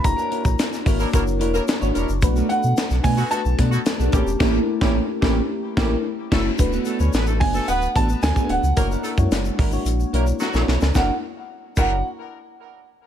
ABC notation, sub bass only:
X:1
M:4/4
L:1/16
Q:1/4=110
K:F#m
V:1 name="Sub bass" clef=bass
F,,, z2 ^A,,, z2 G,,,2 F,,,2 E,,,2 z G,,, E,,, F,,, | B,,,2 z B,, z B,,, B,,2 z B,,, B,,2 z B,,, A,,, E,,, | A,,,2 z A,,,2 z A,,,2 z2 A,,,2 z2 F,,,2 | D,,,2 z D,, A,,,2 F,,,2 D,,,2 A,,,2 D,, z D,,, C,, |
F,,,2 z F,, F,,,2 G,,,2 ^A,,,2 B,,,2 z A,,, B,,, C,, | F,,, z4 z F,,,2 z8 |]